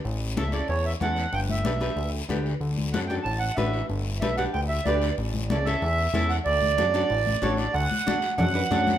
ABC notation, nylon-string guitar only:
X:1
M:4/4
L:1/8
Q:1/4=187
K:D
V:1 name="Nylon-string guitar"
z2 [CEA] [CEA] z2 [CEA] z | z2 [DGB] [DGB] z2 [DGB] z | z2 [DFA] [DFA] z2 [DFB] z | z2 [DGB] [DGB] z2 [DGB] z |
z2 [CEA] [CEA] z2 [CEA] z | z2 [DFA] [DFA] z2 [DFA] z | z2 [DFA] z [DFA] [DFB] [DFA] z |]